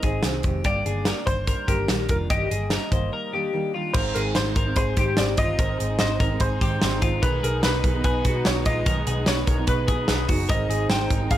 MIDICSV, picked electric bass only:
0, 0, Header, 1, 2, 480
1, 0, Start_track
1, 0, Tempo, 410116
1, 769, Time_signature, 4, 2, 24, 8
1, 13314, End_track
2, 0, Start_track
2, 0, Title_t, "Picked electric bass"
2, 0, Program_c, 0, 34
2, 31, Note_on_c, 0, 32, 84
2, 234, Note_off_c, 0, 32, 0
2, 272, Note_on_c, 0, 36, 69
2, 475, Note_off_c, 0, 36, 0
2, 517, Note_on_c, 0, 29, 78
2, 719, Note_off_c, 0, 29, 0
2, 752, Note_on_c, 0, 31, 87
2, 957, Note_off_c, 0, 31, 0
2, 1002, Note_on_c, 0, 31, 80
2, 1303, Note_off_c, 0, 31, 0
2, 1485, Note_on_c, 0, 31, 83
2, 1786, Note_off_c, 0, 31, 0
2, 1968, Note_on_c, 0, 31, 96
2, 2170, Note_off_c, 0, 31, 0
2, 2208, Note_on_c, 0, 34, 80
2, 2410, Note_off_c, 0, 34, 0
2, 2450, Note_on_c, 0, 29, 74
2, 2652, Note_off_c, 0, 29, 0
2, 2689, Note_on_c, 0, 31, 96
2, 2891, Note_off_c, 0, 31, 0
2, 2941, Note_on_c, 0, 31, 88
2, 3238, Note_off_c, 0, 31, 0
2, 3414, Note_on_c, 0, 31, 95
2, 3615, Note_off_c, 0, 31, 0
2, 4616, Note_on_c, 0, 32, 97
2, 4818, Note_off_c, 0, 32, 0
2, 4863, Note_on_c, 0, 32, 78
2, 5062, Note_off_c, 0, 32, 0
2, 5111, Note_on_c, 0, 32, 89
2, 5306, Note_off_c, 0, 32, 0
2, 5338, Note_on_c, 0, 32, 94
2, 5539, Note_off_c, 0, 32, 0
2, 5579, Note_on_c, 0, 32, 95
2, 5779, Note_off_c, 0, 32, 0
2, 5818, Note_on_c, 0, 44, 96
2, 6019, Note_off_c, 0, 44, 0
2, 6064, Note_on_c, 0, 32, 87
2, 6262, Note_off_c, 0, 32, 0
2, 6291, Note_on_c, 0, 31, 66
2, 6495, Note_off_c, 0, 31, 0
2, 6535, Note_on_c, 0, 32, 106
2, 6737, Note_off_c, 0, 32, 0
2, 6793, Note_on_c, 0, 32, 90
2, 6987, Note_off_c, 0, 32, 0
2, 7025, Note_on_c, 0, 32, 89
2, 7222, Note_off_c, 0, 32, 0
2, 7257, Note_on_c, 0, 32, 102
2, 7457, Note_off_c, 0, 32, 0
2, 7495, Note_on_c, 0, 32, 99
2, 7696, Note_off_c, 0, 32, 0
2, 7741, Note_on_c, 0, 44, 89
2, 7939, Note_off_c, 0, 44, 0
2, 7994, Note_on_c, 0, 32, 95
2, 8186, Note_off_c, 0, 32, 0
2, 8220, Note_on_c, 0, 32, 78
2, 8418, Note_off_c, 0, 32, 0
2, 8460, Note_on_c, 0, 35, 99
2, 8658, Note_off_c, 0, 35, 0
2, 8703, Note_on_c, 0, 35, 97
2, 8899, Note_off_c, 0, 35, 0
2, 8949, Note_on_c, 0, 35, 95
2, 9142, Note_off_c, 0, 35, 0
2, 9170, Note_on_c, 0, 35, 100
2, 9371, Note_off_c, 0, 35, 0
2, 9411, Note_on_c, 0, 35, 100
2, 9611, Note_off_c, 0, 35, 0
2, 9656, Note_on_c, 0, 47, 91
2, 9853, Note_off_c, 0, 47, 0
2, 9906, Note_on_c, 0, 35, 98
2, 10099, Note_off_c, 0, 35, 0
2, 10137, Note_on_c, 0, 34, 86
2, 10333, Note_off_c, 0, 34, 0
2, 10374, Note_on_c, 0, 35, 99
2, 10571, Note_off_c, 0, 35, 0
2, 10614, Note_on_c, 0, 35, 89
2, 10811, Note_off_c, 0, 35, 0
2, 10844, Note_on_c, 0, 35, 96
2, 11044, Note_off_c, 0, 35, 0
2, 11088, Note_on_c, 0, 35, 96
2, 11286, Note_off_c, 0, 35, 0
2, 11329, Note_on_c, 0, 35, 86
2, 11566, Note_on_c, 0, 47, 94
2, 11584, Note_off_c, 0, 35, 0
2, 11764, Note_off_c, 0, 47, 0
2, 11806, Note_on_c, 0, 35, 87
2, 12004, Note_off_c, 0, 35, 0
2, 12046, Note_on_c, 0, 30, 83
2, 12243, Note_off_c, 0, 30, 0
2, 12285, Note_on_c, 0, 32, 98
2, 12482, Note_off_c, 0, 32, 0
2, 12512, Note_on_c, 0, 32, 86
2, 12714, Note_off_c, 0, 32, 0
2, 12745, Note_on_c, 0, 32, 99
2, 12949, Note_off_c, 0, 32, 0
2, 12998, Note_on_c, 0, 32, 98
2, 13197, Note_off_c, 0, 32, 0
2, 13233, Note_on_c, 0, 32, 101
2, 13314, Note_off_c, 0, 32, 0
2, 13314, End_track
0, 0, End_of_file